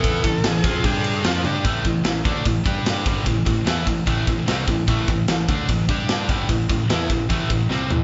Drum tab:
RD |xxxxxxx-|xxxxxxxx|xxxxxxxx|xxxxxxxx|
SD |--o---o-|--o---o-|--o---o-|--o---o-|
T1 |-------o|--------|--------|--------|
FT |--------|--------|--------|--------|
BD |oo-oo---|oo-ooo-o|oo-ooo-o|oo-ooo-o|

RD |xxxxxx--|
SD |--o---o-|
T1 |--------|
FT |-------o|
BD |oo-ooo--|